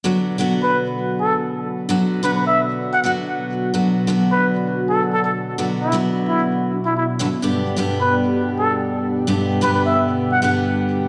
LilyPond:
<<
  \new Staff \with { instrumentName = "Muted trumpet" } { \time 4/4 \key b \minor \tempo 4 = 130 r4 r16 b'16 r4 a'16 r4 r16 | r8. b'16 b'16 e''16 r8. fis''16 fis''16 r4 r16 | r4 r16 b'16 r4 a'16 r16 a'16 a'16 r8 | r8 e'16 r8. e'16 r4 e'16 e'16 r8. |
r4 r16 b'16 r4 a'16 r4 r16 | r8. b'16 b'16 e''16 r8. fis''16 fis''16 r4 r16 | }
  \new Staff \with { instrumentName = "Analog synth pad" } { \time 4/4 \key b \minor << { <fis d' fis'>1~ | <fis d' fis'>1~ | <fis d' fis'>1~ | <fis d' fis'>1 |
<g d' g'>1~ | <g d' g'>1 | } \\ { b,1~ | b,1~ | b,1~ | b,1~ |
b,1~ | b,1 | } >> }
  \new Staff \with { instrumentName = "Steel-string acoustic guitar" } { \clef bass \time 4/4 \key b \minor <d fis b fis'>8. <d fis b fis'>2.~ <d fis b fis'>16 | <d fis b fis'>8. <d fis b fis'>4.~ <d fis b fis'>16 <d fis b fis'>4. | <d fis b fis'>8. <d fis b fis'>2.~ <d fis b fis'>16 | <d fis b fis'>8. <d fis b fis'>4.~ <d fis b fis'>16 r4 <g, d fis b fis'>16 r16 |
<g, d g b g'>8. <g, d g b g'>2.~ <g, d g b g'>16 | <g, d g b g'>8. <g, d g b g'>4.~ <g, d g b g'>16 <g, d g b g'>4. | }
>>